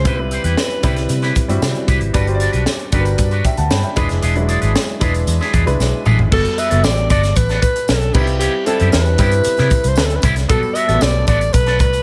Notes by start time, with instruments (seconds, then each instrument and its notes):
0.04 fingered electric bass C2, grand piano G3 C4 E4 B4, clean electric guitar E4 G4 B4, alto saxophone B4, kick, closed hi-hat, tambourine
0.18 grand piano G3 C4 E4 B4, muted clean electric guitar stroke
0.31 clean electric guitar E4 G4 C5, closed hi-hat, tambourine
0.44 fingered electric bass E2, clean electric guitar E4 G4 B4, closed hi-hat
0.57 snare, tambourine
0.70 muted clean electric guitar stroke, closed hi-hat
0.83 fingered electric bass C2, grand piano G3 C4 E4 B4, clean electric guitar E4 G4 B4, kick, closed hi-hat, tambourine
0.96 muted clean electric guitar stroke, snare, closed hi-hat, tambourine
1.09 fingered electric bass C3, muted clean electric guitar stroke, closed hi-hat, tambourine
1.22 clean electric guitar E4 G4 B4, snare, closed hi-hat
1.35 muted clean electric guitar stroke, kick, closed hi-hat, tambourine
1.48 fingered electric bass G2, grand piano G3 C4 E4 F#4, muted clean electric guitar stroke, closed hi-hat, tambourine
1.62 fingered electric bass C3, snare, tambourine
1.74 muted clean electric guitar stroke, closed hi-hat
1.87 fingered electric bass C2, clean electric guitar E4 G4 B4, kick, closed hi-hat, tambourine
2.01 fingered electric bass G#1, muted clean electric guitar stroke, closed hi-hat
2.13 fingered electric bass G1, grand piano G3 D4 F#4 B4, clean electric guitar D4 F#4 B4, kick, closed hi-hat, tambourine
2.27 grand piano G3 D4 F#4 C5, muted clean electric guitar stroke, closed hi-hat
2.35 grand piano D5
2.39 clean electric guitar D4 F#4 D5, closed hi-hat, tambourine
2.52 fingered electric bass B1, clean electric guitar D4 F#4 B4, closed hi-hat
2.66 snare, tambourine
2.79 muted clean electric guitar stroke, closed hi-hat
2.92 fingered electric bass G1, grand piano G3 D4 F#4 A#4, clean electric guitar D4 F#4 B4, kick, closed hi-hat, tambourine
3.00 grand piano B4
3.05 muted clean electric guitar stroke, closed hi-hat, tambourine
3.18 fingered electric bass G2, muted clean electric guitar stroke, kick, closed hi-hat, tambourine
3.31 clean electric guitar D4 F#4 B4, closed hi-hat, tambourine
3.45 grand piano E5 G5, muted clean electric guitar stroke, kick, closed hi-hat, tambourine
3.57 fingered electric bass D2, grand piano F#5 A5, muted clean electric guitar stroke, closed hi-hat
3.70 fingered electric bass G2, grand piano G5 B5, snare, tambourine
3.83 grand piano E5 G5, closed hi-hat
3.96 fingered electric bass E1, grand piano G#3 D4 E4 B4, clean electric guitar D4 G#4 B4, kick, closed hi-hat, tambourine
4.09 fingered electric bass F1, muted clean electric guitar stroke, snare, closed hi-hat
4.22 fingered electric bass E1, clean electric guitar D4 G#4 B4, closed hi-hat, tambourine
4.35 grand piano F#3 D4 E4 B4, muted clean electric guitar stroke, closed hi-hat
4.42 grand piano G#3
4.48 clean electric guitar D4 G#4 D5, closed hi-hat, tambourine
4.61 fingered electric bass G#1, clean electric guitar D4 G#4 B4, closed hi-hat
4.75 muted clean electric guitar stroke, snare, tambourine
4.88 muted clean electric guitar stroke, closed hi-hat
5.00 fingered electric bass E1, grand piano G#3 D4 E4 B4, clean electric guitar D4 G#4 B4, kick, closed hi-hat, tambourine
5.14 muted clean electric guitar stroke, closed hi-hat, tambourine
5.27 fingered electric bass E2, muted clean electric guitar stroke, closed hi-hat, tambourine
5.40 clean electric guitar D4 G#4 B4, snare, tambourine
5.53 fingered electric bass E2, clean electric guitar D4 G#4 B4, kick, closed hi-hat, tambourine
5.66 fingered electric bass C2, grand piano G#3 D4 E4 B4, muted clean electric guitar stroke, closed hi-hat, tambourine
5.80 fingered electric bass B1, snare, tambourine
5.92 muted clean electric guitar stroke
6.05 fingered electric bass A1, clean electric guitar D4 G#4 B4, mid tom, tambourine
6.19 fingered electric bass G#1, muted clean electric guitar stroke, floor tom
6.31 fingered electric bass G1, grand piano G3 B3 F#4 A4, clean electric guitar B3 F#4 A4, alto saxophone A4, kick, crash, tambourine
6.45 muted clean electric guitar stroke, closed hi-hat
6.57 clean electric guitar B3 F#4 B4, alto saxophone E5, closed hi-hat, tambourine
6.70 fingered electric bass F#1, grand piano G3 B3 F#4 A4, clean electric guitar B3 F#4 A4, closed hi-hat
6.84 fingered electric bass A1, alto saxophone D5, snare, tambourine
6.96 muted clean electric guitar stroke, closed hi-hat
7.09 fingered electric bass G1, clean electric guitar B3 F#4 A4, alto saxophone D5, kick, closed hi-hat, tambourine
7.23 muted clean electric guitar stroke, snare, closed hi-hat, tambourine
7.36 fingered electric bass A1, alto saxophone B4, muted clean electric guitar stroke, kick, closed hi-hat, tambourine
7.49 clean electric guitar B3 F#4 A4, snare, closed hi-hat, tambourine
7.62 alto saxophone B4, muted clean electric guitar stroke, kick, closed hi-hat, tambourine
7.76 muted clean electric guitar stroke, closed hi-hat, tambourine
7.88 fingered electric bass B1, alto saxophone A4, muted clean electric guitar stroke, snare, tambourine
8.01 muted clean electric guitar stroke, closed hi-hat
8.14 fingered electric bass C2, grand piano G3 C4 D#4 B4, clean electric guitar B3 E4 G4, alto saxophone G4, kick, tambourine, crash
8.21 grand piano E4
8.27 muted clean electric guitar stroke, closed hi-hat
8.39 clean electric guitar B3 E4 G4, alto saxophone G4, closed hi-hat, tambourine
8.54 muted clean electric guitar stroke
8.66 grand piano G3 C4 E4 A4, clean electric guitar B3 E4 A4, alto saxophone A4, closed hi-hat, tambourine
8.80 fingered electric bass F#2, clean electric guitar B3 E4 G4, closed hi-hat
8.92 fingered electric bass E2, alto saxophone B4, muted clean electric guitar stroke, snare, tambourine
9.06 muted clean electric guitar stroke, closed hi-hat
9.18 fingered electric bass G2, grand piano G3 C4 E4 B4, clean electric guitar B3 E4 G4, kick, closed hi-hat, tambourine
9.31 muted clean electric guitar stroke, closed hi-hat, tambourine
9.44 muted clean electric guitar stroke, muted fingered electric bass stroke, closed hi-hat, tambourine
9.57 fingered electric bass C3, clean electric guitar B3 E4 G4, snare, closed hi-hat, tambourine
9.70 muted clean electric guitar stroke, kick, closed hi-hat, tambourine
9.84 fingered electric bass C2, muted clean electric guitar stroke, closed hi-hat, tambourine
9.88 alto saxophone C5
9.96 fingered electric bass D2, alto saxophone B4, snare, tambourine
10.05 alto saxophone A4
10.10 muted clean electric guitar stroke, closed hi-hat
10.15 alto saxophone B4
10.22 fingered electric bass C2, clean electric guitar B3 E4 G4, kick, closed hi-hat, tambourine
10.36 muted clean electric guitar stroke, snare, closed hi-hat
10.49 fingered electric bass B1, grand piano G3 B3 F#4 A4, clean electric guitar B3 F#4 A4, alto saxophone A4, kick, closed hi-hat, tambourine
10.62 muted clean electric guitar stroke, tambourine
10.75 clean electric guitar B3 F#4 B4, alto saxophone E5, closed hi-hat, tambourine
10.87 fingered electric bass A1, grand piano G3 A3 F#4 A4, clean electric guitar B3 F#4 A4, closed hi-hat
10.94 grand piano B3
11.01 fingered electric bass B1, alto saxophone D5, snare, tambourine
11.14 muted clean electric guitar stroke
11.27 fingered electric bass A1, clean electric guitar B3 F#4 A4, alto saxophone D5, kick, closed hi-hat, tambourine
11.40 muted clean electric guitar stroke, closed hi-hat, tambourine
11.53 fingered electric bass B1, alto saxophone B4, muted clean electric guitar stroke, kick, closed hi-hat, tambourine
11.66 clean electric guitar B3 F#4 A4, snare, closed hi-hat
11.79 fingered electric bass C2, alto saxophone B4, muted clean electric guitar stroke, kick, closed hi-hat, tambourine
11.93 muted clean electric guitar stroke, closed hi-hat, tambourine